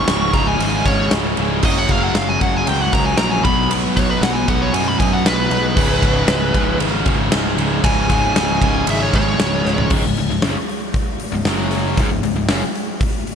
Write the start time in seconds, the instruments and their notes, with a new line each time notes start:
Already playing: lead electric guitar C#6
0.06 picked electric bass C#1, distorted electric guitar C#2 G#2 C#3, snare, ride
0.31 picked electric bass C#1, distorted electric guitar C#2 G#2 C#3, lead electric guitar A#5, kick, ride
0.47 lead electric guitar G#5
0.58 picked electric bass G#1, distorted electric guitar C#2 G#2 C#3, ride
0.85 picked electric bass G#1, distorted electric guitar C#2 G#2 C#3, lead electric guitar C#5, kick, ride
1.11 picked electric bass C#1, distorted electric guitar C#2 G#2 C#3, snare, ride
1.37 picked electric bass C#1, distorted electric guitar C#2 G#2 C#3, ride
1.63 picked electric bass F#1, distorted electric guitar F#2 C#3 F#3, lead electric guitar D#5, kick, crash
1.78 lead electric guitar F#5
1.88 distorted electric guitar F#2 C#3 F#3, lead electric guitar F5, kick, ride
2.03 lead electric guitar F#5
2.13 picked electric bass F#1, distorted electric guitar F#2 C#3 F#3, lead electric guitar F5, snare, ride
2.29 lead electric guitar G#5
2.39 picked electric bass F#1, distorted electric guitar F#2 C#3 F#3, lead electric guitar F#5, kick, ride
2.57 lead electric guitar G#5
2.65 picked electric bass C#2, distorted electric guitar F#2 C#3 F#3, lead electric guitar G5, ride
2.70 overdriven electric guitar F#3
2.81 lead electric guitar F#5
2.92 picked electric bass C#2, distorted electric guitar F#2 C#3 F#3, lead electric guitar A#5, kick, ride
3.06 lead electric guitar G#5
3.17 picked electric bass A#1, distorted electric guitar F#2 C#3 F#3, lead electric guitar A#5, snare, ride
3.31 lead electric guitar G#5
3.44 picked electric bass B1, distorted electric guitar B2 F#3 B3, lead electric guitar B5, kick, ride
3.69 picked electric bass B1, distorted electric guitar B2 F#3 B3, ride
3.96 distorted electric guitar B2 F#3 B3, lead electric guitar C#5, kick, snare, ride
4.11 lead electric guitar B4
4.21 picked electric bass B1, distorted electric guitar B2 F#3 B3, lead electric guitar F#5, snare, ride
4.33 lead electric guitar G#5
4.48 picked electric bass B1, distorted electric guitar B2 F#3 B3, lead electric guitar F#5, kick, ride
4.62 lead electric guitar C#5
4.73 picked electric bass F#2, distorted electric guitar B2 F#3 B3, lead electric guitar G#5, ride
4.88 lead electric guitar B5
4.99 picked electric bass F#2, distorted electric guitar B2 F#3 B3, lead electric guitar G#5, kick, ride
5.13 lead electric guitar F#5
5.25 picked electric bass B1, distorted electric guitar B2 F#3 B3, lead electric guitar B4, snare, ride
5.50 picked electric bass B1, distorted electric guitar B2 F#3 B3, ride
5.76 picked electric bass C#1, distorted electric guitar C#2 G#2 C#3, kick, crash
6.03 distorted electric guitar C#2 G#2 C#3, kick, snare, ride
6.28 picked electric bass C#1, distorted electric guitar C#2 G#2 C#3, snare, ride
6.54 picked electric bass C#1, distorted electric guitar C#2 G#2 C#3, kick, ride
6.79 picked electric bass G#1, distorted electric guitar C#2 G#2 C#3, ride
7.05 picked electric bass G#1, distorted electric guitar C#2 G#2 C#3, kick, ride
7.31 picked electric bass C#1, distorted electric guitar C#2 G#2 C#3, snare, ride
7.56 picked electric bass C#1, distorted electric guitar C#2 G#2 C#3, ride
7.82 picked electric bass C#1, distorted electric guitar C#2 G#2 C#3, lead electric guitar G#5, kick, ride
8.08 distorted electric guitar C#2 G#2 C#3, kick, snare, ride
8.36 picked electric bass C#1, distorted electric guitar C#2 G#2 C#3, snare, ride
8.61 picked electric bass C#1, distorted electric guitar C#2 G#2 C#3, kick, ride
8.87 picked electric bass G#1, distorted electric guitar C#2 G#2 C#3, lead electric guitar E5, ride
9.03 lead electric guitar C#5
9.13 picked electric bass G#1, distorted electric guitar C#2 G#2 C#3, lead electric guitar C#5, kick, ride
9.39 picked electric bass C#1, distorted electric guitar C#2 G#2 C#3, snare, ride
9.65 picked electric bass C#1, distorted electric guitar C#2 G#2 C#3, snare
9.78 floor tom
9.90 picked electric bass C#1, distorted electric guitar C#2 G#2, kick, crash
10.04 picked electric bass C#1, distorted electric guitar C#2 G#2
10.17 picked electric bass C#1, distorted electric guitar C#2 G#2, open hi-hat
10.30 picked electric bass C#1, distorted electric guitar C#2 G#2, snare
10.42 picked electric bass F#1, distorted electric guitar F#2 C#3, snare, open hi-hat
10.70 open hi-hat
10.94 kick, open hi-hat
11.20 open hi-hat
11.32 picked electric bass C#1, distorted electric guitar C#2 G#2
11.45 picked electric bass F#1, distorted electric guitar F#2 C#3 F#3, snare, open hi-hat
11.71 snare, open hi-hat
11.97 picked electric bass C#1, distorted electric guitar C#2 G#2, kick, open hi-hat
12.09 picked electric bass C#1, distorted electric guitar C#2 G#2
12.22 picked electric bass C#1, distorted electric guitar C#2 G#2, open hi-hat
12.35 picked electric bass C#1, distorted electric guitar C#2 G#2
12.49 picked electric bass F#1, distorted electric guitar F#2 C#3, snare, open hi-hat
12.75 open hi-hat
13.01 kick, open hi-hat
13.27 open hi-hat